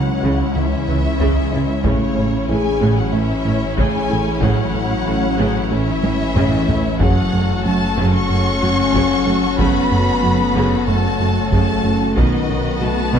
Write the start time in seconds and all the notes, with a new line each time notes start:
Already playing: C#2 C#3 F#3 G#3 C#4 E4 C#5 F#5
0.23 C#2 C#3
0.55 C#2 C#3 E3 G#3 E5
0.88 C#2 C#3 E3
1.20 C#2 C#3, taiko
1.52 C#2 C#3 G#3
1.84 A1 A2 C#3 E3 A3 C#4 E4 C#5, taiko
2.16 A1 A2 A3 C#4
2.48 A1 A2 E3 A3 E4 G#4 G#5
2.80 A1 A2 C#3 A3
2.98 F#3 F#5
3.13 A1 A2 E3 A3 C#4 E5
3.45 A1 A2 E3 C#4
3.77 A1 A2 C#3 A3 G#4 G#5, taiko
4.09 A1 A2 A3 E4
4.42 A1 A2 C#3 F#3 A3 F#5, taiko
4.74 A1 A2 A3 C#4
5.07 A1 A2 E3 A3 E4
5.38 A1 A2 C#3 A3
5.71 A1 A2 E3 A3 C#4 E5
6.03 A1 A2 E3 C#4, taiko high
6.36 A1 A2 C#3 A3, taiko low-mid
6.67 A1 A2 A3 E4, taiko low
7.00 F#1 F#2 C#3 F#3 A3 C#4 F#4 A4 C#5 F#5, taiko
7.32 F#1 F#2 A3
7.64 F#1 F#2 F#3 A3 C#4 A5
7.97 F#1 F#2 C#3 F#3
8.14 C#4 C#6
8.29 F#1 F#2 A3
8.61 F#1 F#2 F#3 A3
8.94 F#1 F#2 C#3 F#3, taiko
9.26 F#1 F#2 F#3 A3 C#4
9.58 F#1 F#2 C#3 F#3 B3 B5, taiko
9.90 F#1 F#2 A3
10.22 F#1 F#2 F#3 C#4
10.55 F#1 F#2 C#3 F#3
10.87 F#1 F#2 A3 A5
11.19 F#1 F#2 F#3 A3
11.52 F#1 F#2 C#3 F#3 A3 A5, taiko
11.85 F#1 F#2 F#3 A3 C#4
12.17 B1 B2 D#3 F#3 B3 F#4 B4 D#5 F#5, taiko
12.49 B1 B2 F#3 D#4
12.80 B1 B2 D#3 A3 B3 F#4 A5, taiko mid
13.13 B1 B2 D#3 B3